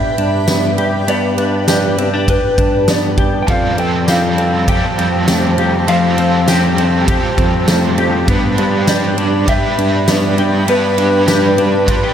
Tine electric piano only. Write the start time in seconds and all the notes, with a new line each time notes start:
0.18 G2
0.48 G2
0.78 G2
1.08 G2
1.38 G2
1.68 G2
1.98 G2
2.58 G2
2.88 G2
3.17 G2
3.48 F2
3.78 F2
4.08 F2
4.38 F2
4.98 F2
5.28 F2
5.58 F2
5.88 F2
6.18 F2
6.48 F2
6.78 F2
7.38 F2
7.68 F2
7.98 F2
8.28 G2
8.58 G2
8.88 G2
9.18 G2
9.78 G2
10.08 G2
10.38 G2
10.68 G2
10.98 G2
11.28 G2
11.58 G2